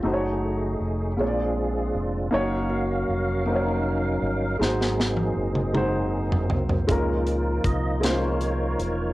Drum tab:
HH |------------|------------|------------|x-x-x-x-x-x-|
SD |------------|------------|ooo---------|------o-----|
T1 |------------|------------|---o--------|------------|
T2 |------------|------------|-----oo-----|------------|
FT |------------|------------|---------ooo|------------|
BD |------------|------------|------------|o---o-------|